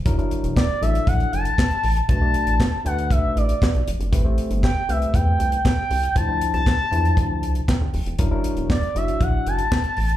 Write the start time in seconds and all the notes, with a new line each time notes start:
0.05 F#1 F#3 D4 E4 A#4, kick, closed hi-hat
0.18 F#3 D4 E4 A#4, closed hi-hat
0.31 closed hi-hat
0.44 E1, closed hi-hat
0.56 D5, kick, snare, clap
0.81 A1 F#3 D4 E4 A4 E5, closed hi-hat
0.95 closed hi-hat
1.07 A#1 F#5, kick, closed hi-hat
1.20 closed hi-hat
1.32 F#1 A5, closed hi-hat
1.45 closed hi-hat
1.58 kick, snare, clap
1.71 closed hi-hat
1.84 A1, open hi-hat
1.97 closed hi-hat
2.08 B1 A3 D4 F#4 B4 A5, kick, closed hi-hat
2.21 A3 D4 F#4 D5
2.34 closed hi-hat
2.47 A1, closed hi-hat
2.60 kick, snare, clap
2.85 D2 A3 D4 F#4 B4 F#5, closed hi-hat
2.98 closed hi-hat
3.10 B1 E5, kick, closed hi-hat
3.36 A1 D5, closed hi-hat
3.49 closed hi-hat
3.62 kick, snare, clap
3.74 B1, closed hi-hat
3.87 F1, closed hi-hat
4.00 F#1, closed hi-hat
4.12 A1 A3 C4 G4 B4, kick, closed hi-hat
4.24 A3 C4 G4 C5
4.38 closed hi-hat
4.50 G1, closed hi-hat
4.63 G5, kick, snare, clap
4.88 C2 A3 C4 G4 B4 E5, closed hi-hat
5.02 closed hi-hat
5.14 E2 G5, kick, closed hi-hat
5.39 C2, closed hi-hat
5.52 closed hi-hat
5.65 G5, kick, snare, clap
5.91 C2, open hi-hat
6.04 closed hi-hat
6.15 D2 F3 D4 E4 C5 A5, kick, closed hi-hat
6.28 F3 D4 E4 C5
6.41 closed hi-hat
6.54 C2 A5, closed hi-hat
6.66 kick, snare, clap
6.91 E2 F3 D4 E4 C5, closed hi-hat
7.05 closed hi-hat
7.17 D2, kick, closed hi-hat
7.43 C2, closed hi-hat
7.55 closed hi-hat
7.68 G5, kick, snare, clap
7.81 D2
7.94 F1, open hi-hat
8.06 E1, closed hi-hat
8.19 F#1 F#3 D4 E4 A#4, kick, closed hi-hat
8.31 F#3 D4 E4 A#4
8.44 closed hi-hat
8.57 E1, closed hi-hat
8.70 D5, kick, snare, clap
8.83 closed hi-hat
8.95 F#1 F#3 D4 E4 F#4 E5, closed hi-hat
9.08 closed hi-hat
9.21 A#1 F#5, kick, closed hi-hat
9.47 F#1 A5, closed hi-hat
9.59 closed hi-hat
9.72 kick, snare, clap
9.84 closed hi-hat
9.97 A1, open hi-hat
10.10 closed hi-hat